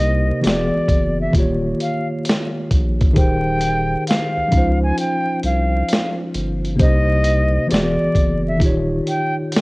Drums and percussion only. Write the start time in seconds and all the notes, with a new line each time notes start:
0.44 snare, closed hi-hat
0.88 kick, closed hi-hat
1.33 kick, closed hi-hat
1.80 closed hi-hat
2.25 closed hi-hat
2.29 snare
2.71 kick, closed hi-hat
3.01 kick, closed hi-hat
3.16 kick, closed hi-hat
3.61 closed hi-hat
4.07 snare, closed hi-hat
4.52 kick, closed hi-hat
4.98 closed hi-hat
5.43 closed hi-hat
5.88 closed hi-hat
5.93 snare
6.34 closed hi-hat
6.65 closed hi-hat
6.80 kick, closed hi-hat
7.24 closed hi-hat
7.71 snare, closed hi-hat
8.15 kick, closed hi-hat
8.60 kick, closed hi-hat
9.07 closed hi-hat
9.52 closed hi-hat
9.56 snare